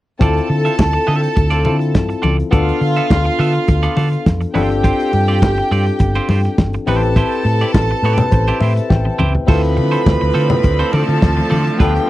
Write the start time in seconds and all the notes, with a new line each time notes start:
0.19 D2 C4 E4 F4 A4 D5 A5, kick, closed hi-hat
0.37 closed hi-hat
0.49 D3, muted clean electric guitar stroke
0.65 C4 F4 A4 E5, closed hi-hat
0.78 D2, muted clean electric guitar stroke, kick, snare, closed hi-hat, high conga
0.93 muted clean electric guitar stroke, closed hi-hat
1.07 D3 C4 F4 A4 E5
1.22 muted clean electric guitar stroke, closed hi-hat
1.36 D2, muted clean electric guitar stroke, kick, closed hi-hat, muted conga
1.50 C4 F4 A4 D5, closed hi-hat
1.65 D3 C4 E4 F4 A4 D5, muted conga
1.81 closed hi-hat
1.95 G2, kick, snare, closed hi-hat, high conga
2.09 muted clean electric guitar stroke, closed hi-hat
2.22 C#2 C4 F4 A4 D5, high conga
2.40 closed hi-hat
2.51 D2 B3 D4 F4 A4 D5 F5, kick, closed hi-hat
2.69 closed hi-hat
2.81 D3, muted clean electric guitar stroke, open hi-hat
2.96 B3 F4 A4 E5, closed hi-hat
3.10 D2, kick, snare, closed hi-hat, high conga
3.25 muted clean electric guitar stroke, closed hi-hat
3.39 D3 B3 F4 A4 E5, open hi-hat
3.55 closed hi-hat
3.68 D2, muted clean electric guitar stroke, kick, closed hi-hat, muted conga
3.83 B3 F4 A4 D5, closed hi-hat
3.96 D3 B3 F4 A4 D5, open hi-hat, muted conga
4.13 closed hi-hat
4.26 F2, kick, snare, closed hi-hat, high conga
4.41 muted clean electric guitar stroke, closed hi-hat
4.54 G1 C4 D4 F4 G4 A4 C5 G5, open hi-hat, high conga
4.70 muted clean electric guitar stroke, closed hi-hat
4.84 C4 F4 G4 C5, kick, closed hi-hat
5.00 closed hi-hat
5.13 G2, muted clean electric guitar stroke, open hi-hat, muted conga
5.28 C4 F4 G4 D5, closed hi-hat
5.42 G1, muted clean electric guitar stroke, kick, snare, closed hi-hat, high conga
5.56 muted clean electric guitar stroke, closed hi-hat
5.71 G2 C4 F4 G4 D5, open hi-hat
5.86 closed hi-hat
5.99 G1, muted clean electric guitar stroke, kick, closed hi-hat, muted conga
6.15 C4 F4 G4 C5, closed hi-hat
6.29 G2 C4 F4 G4 C5, open hi-hat, muted conga
6.45 muted clean electric guitar stroke, snare, closed hi-hat
6.58 G1, kick, snare, closed hi-hat, high conga
6.73 muted clean electric guitar stroke, closed hi-hat
6.86 A1 C4 E4 G4 A4 B4 C5 A5, open hi-hat, high conga
7.03 muted clean electric guitar stroke, closed hi-hat
7.16 C4 E4 G4 C5, kick, closed hi-hat
7.32 closed hi-hat
7.45 A2, muted clean electric guitar stroke, open hi-hat
7.61 C4 E4 G4 D5, closed hi-hat
7.74 A1, muted clean electric guitar stroke, kick, snare, closed hi-hat, high conga
7.89 muted clean electric guitar stroke, closed hi-hat
8.03 A2 C4 E4 G4 B4 D5, open hi-hat
8.18 muted clean electric guitar stroke, closed hi-hat, low conga
8.31 A1 C5, muted clean electric guitar stroke, kick, closed hi-hat, muted conga
8.47 C4 E4 G4 C5, closed hi-hat
8.60 A2 C4 E4 G4 C5 E5, open hi-hat, muted conga
8.77 muted clean electric guitar stroke, snare, closed hi-hat
8.90 A1 G5, kick, snare, high conga
9.05 muted clean electric guitar stroke, high tom
9.19 C#2 C4 E4 G4 C5, mid tom, high conga
9.35 floor tom
9.47 D2 D3 F3 A3 C4 E4 F4 A4 B4 C5 B5, kick, crash
9.64 closed hi-hat
9.76 D3, muted clean electric guitar stroke, open hi-hat, muted conga
9.92 C4 F4 A4 C5, closed hi-hat
10.06 D2, kick, snare, closed hi-hat, high conga
10.21 D2, muted clean electric guitar stroke, closed hi-hat
10.34 D3 C4 F4 A4 C5, open hi-hat
10.50 muted clean electric guitar stroke, closed hi-hat, low conga
10.63 D2, muted clean electric guitar stroke, kick, closed hi-hat, muted conga
10.79 C4 F4 A4 C5, closed hi-hat
10.93 D3 C4 F4 A4 D5 A5, open hi-hat, muted conga
11.08 D3, muted clean electric guitar stroke, closed hi-hat
11.22 D2, kick, snare, closed hi-hat, high conga
11.37 muted clean electric guitar stroke, closed hi-hat, high conga
11.50 D3 C4 F4 A4 D5, open hi-hat, high conga
11.67 closed hi-hat
11.79 D2 A3 B3 D4 F4 G4 A4 B4 G5, kick, closed hi-hat
11.96 closed hi-hat